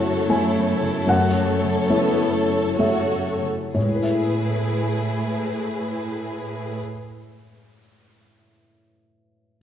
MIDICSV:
0, 0, Header, 1, 6, 480
1, 0, Start_track
1, 0, Key_signature, 3, "major"
1, 0, Tempo, 775194
1, 665, Time_signature, 3, 2, 24, 8
1, 665, Tempo, 823045
1, 1145, Tempo, 887574
1, 1625, Tempo, 967742
1, 5015, End_track
2, 0, Start_track
2, 0, Title_t, "Violin section"
2, 0, Program_c, 0, 48
2, 0, Note_on_c, 0, 69, 41
2, 0, Note_on_c, 0, 73, 41
2, 657, Note_off_c, 0, 73, 0
2, 665, Note_on_c, 0, 73, 53
2, 1603, Note_off_c, 0, 69, 0
2, 1607, Note_off_c, 0, 73, 0
2, 1625, Note_on_c, 0, 66, 44
2, 1625, Note_on_c, 0, 73, 42
2, 1962, Note_off_c, 0, 73, 0
2, 1969, Note_off_c, 0, 66, 0
2, 2101, Note_on_c, 0, 68, 37
2, 2104, Note_on_c, 0, 71, 36
2, 3607, Note_off_c, 0, 68, 0
2, 3609, Note_off_c, 0, 71, 0
2, 5015, End_track
3, 0, Start_track
3, 0, Title_t, "Felt piano"
3, 0, Program_c, 1, 0
3, 0, Control_c, 1, 64, 127
3, 0, Note_on_c, 1, 42, 40
3, 0, Note_on_c, 1, 57, 29
3, 0, Note_on_c, 1, 64, 27
3, 0, Note_on_c, 1, 73, 32
3, 0, Note_on_c, 1, 81, 61
3, 157, Note_off_c, 1, 81, 0
3, 160, Note_off_c, 1, 57, 0
3, 161, Note_off_c, 1, 64, 0
3, 163, Note_off_c, 1, 73, 0
3, 180, Note_on_c, 1, 57, 32
3, 182, Note_on_c, 1, 64, 31
3, 184, Note_on_c, 1, 80, 55
3, 186, Note_on_c, 1, 73, 35
3, 640, Note_off_c, 1, 57, 0
3, 640, Note_off_c, 1, 64, 0
3, 641, Note_off_c, 1, 80, 0
3, 642, Note_off_c, 1, 73, 0
3, 663, Note_off_c, 1, 42, 0
3, 663, Note_on_c, 1, 42, 49
3, 673, Note_on_c, 1, 78, 65
3, 677, Control_c, 1, 64, 0
3, 782, Control_c, 1, 64, 127
3, 1130, Note_off_c, 1, 42, 0
3, 1142, Note_on_c, 1, 57, 34
3, 1145, Note_on_c, 1, 64, 36
3, 1147, Note_on_c, 1, 73, 36
3, 1602, Note_off_c, 1, 57, 0
3, 1604, Note_off_c, 1, 64, 0
3, 1604, Note_off_c, 1, 73, 0
3, 1607, Note_off_c, 1, 78, 0
3, 1625, Note_on_c, 1, 57, 30
3, 1626, Note_on_c, 1, 64, 32
3, 1629, Note_on_c, 1, 73, 32
3, 1631, Note_on_c, 1, 76, 50
3, 1846, Note_off_c, 1, 76, 0
3, 2080, Note_off_c, 1, 57, 0
3, 2081, Note_off_c, 1, 64, 0
3, 2082, Note_off_c, 1, 73, 0
3, 2100, Note_on_c, 1, 45, 30
3, 2102, Note_on_c, 1, 73, 40
3, 2113, Control_c, 1, 64, 0
3, 2134, Note_on_c, 1, 56, 30
3, 2170, Note_on_c, 1, 64, 30
3, 2203, Note_on_c, 1, 71, 29
3, 2230, Control_c, 1, 64, 127
3, 2240, Note_on_c, 1, 76, 27
3, 3605, Note_off_c, 1, 45, 0
3, 3607, Note_off_c, 1, 73, 0
3, 3640, Note_off_c, 1, 56, 0
3, 3675, Note_off_c, 1, 64, 0
3, 3709, Note_off_c, 1, 71, 0
3, 3745, Note_off_c, 1, 76, 0
3, 4995, Control_c, 1, 64, 0
3, 5015, End_track
4, 0, Start_track
4, 0, Title_t, "Viola section"
4, 0, Program_c, 2, 48
4, 0, Note_on_c, 2, 57, 44
4, 0, Note_on_c, 2, 66, 49
4, 157, Note_off_c, 2, 66, 0
4, 178, Note_on_c, 2, 64, 46
4, 411, Note_off_c, 2, 64, 0
4, 419, Note_on_c, 2, 64, 46
4, 656, Note_off_c, 2, 57, 0
4, 659, Note_off_c, 2, 64, 0
4, 663, Note_on_c, 2, 66, 50
4, 664, Note_on_c, 2, 57, 46
4, 899, Note_on_c, 2, 69, 51
4, 900, Note_off_c, 2, 66, 0
4, 1135, Note_off_c, 2, 57, 0
4, 1139, Note_on_c, 2, 59, 48
4, 1378, Note_off_c, 2, 59, 0
4, 1378, Note_on_c, 2, 57, 45
4, 1615, Note_off_c, 2, 57, 0
4, 1616, Note_off_c, 2, 69, 0
4, 1621, Note_on_c, 2, 57, 40
4, 1623, Note_on_c, 2, 69, 41
4, 1960, Note_off_c, 2, 57, 0
4, 1961, Note_off_c, 2, 69, 0
4, 2099, Note_on_c, 2, 57, 36
4, 2099, Note_on_c, 2, 64, 37
4, 3604, Note_off_c, 2, 57, 0
4, 3605, Note_off_c, 2, 64, 0
4, 5015, End_track
5, 0, Start_track
5, 0, Title_t, "Harp"
5, 0, Program_c, 3, 46
5, 0, Note_on_c, 3, 42, 39
5, 0, Note_on_c, 3, 49, 34
5, 0, Note_on_c, 3, 57, 34
5, 0, Note_on_c, 3, 73, 34
5, 0, Note_on_c, 3, 76, 39
5, 0, Note_on_c, 3, 88, 37
5, 29, Note_on_c, 3, 64, 30
5, 176, Note_off_c, 3, 49, 0
5, 183, Note_on_c, 3, 49, 34
5, 336, Note_off_c, 3, 57, 0
5, 343, Note_on_c, 3, 57, 34
5, 494, Note_off_c, 3, 49, 0
5, 501, Note_on_c, 3, 49, 36
5, 657, Note_off_c, 3, 42, 0
5, 664, Note_on_c, 3, 42, 44
5, 816, Note_off_c, 3, 57, 0
5, 823, Note_on_c, 3, 57, 36
5, 979, Note_off_c, 3, 49, 0
5, 986, Note_on_c, 3, 49, 36
5, 1140, Note_off_c, 3, 64, 0
5, 1147, Note_on_c, 3, 64, 43
5, 1162, Note_off_c, 3, 88, 0
5, 1263, Note_off_c, 3, 76, 0
5, 1297, Note_off_c, 3, 73, 0
5, 1304, Note_on_c, 3, 73, 41
5, 1457, Note_off_c, 3, 64, 0
5, 1464, Note_on_c, 3, 64, 32
5, 1620, Note_off_c, 3, 49, 0
5, 1626, Note_on_c, 3, 49, 34
5, 1774, Note_off_c, 3, 57, 0
5, 1780, Note_on_c, 3, 57, 34
5, 1935, Note_off_c, 3, 49, 0
5, 1941, Note_on_c, 3, 49, 22
5, 2100, Note_on_c, 3, 45, 26
5, 2119, Note_off_c, 3, 42, 0
5, 2120, Note_off_c, 3, 49, 0
5, 2136, Note_on_c, 3, 56, 27
5, 2164, Note_off_c, 3, 64, 0
5, 2170, Note_on_c, 3, 64, 27
5, 2205, Note_on_c, 3, 71, 27
5, 2240, Note_on_c, 3, 76, 28
5, 3265, Note_off_c, 3, 73, 0
5, 3675, Note_off_c, 3, 64, 0
5, 3711, Note_off_c, 3, 71, 0
5, 3714, Note_off_c, 3, 57, 0
5, 3745, Note_off_c, 3, 76, 0
5, 3845, Note_off_c, 3, 56, 0
5, 4034, Note_off_c, 3, 45, 0
5, 5015, End_track
6, 0, Start_track
6, 0, Title_t, "Cello section"
6, 0, Program_c, 4, 48
6, 0, Note_on_c, 4, 42, 43
6, 1947, Note_off_c, 4, 42, 0
6, 2097, Note_on_c, 4, 45, 32
6, 3602, Note_off_c, 4, 45, 0
6, 5015, End_track
0, 0, End_of_file